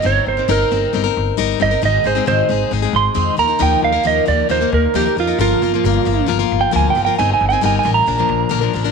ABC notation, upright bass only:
X:1
M:4/4
L:1/8
Q:1/4=135
K:Cdor
V:1 name="Upright bass" clef=bass
G,,, G,,, G,,, G,,, G,,, G,,, G,,, G,,, | _A,,, A,,, A,,, A,,, A,,, A,,, F,, E,, | E,, E,, E,, E,, E,, E,, E,, F,, | G,,, G,,, G,,, G,,, G,,, G,,, D,, G,,, |
G,,, G,,, G,,, A,,, B,,, B,,, B,,, A,,, |]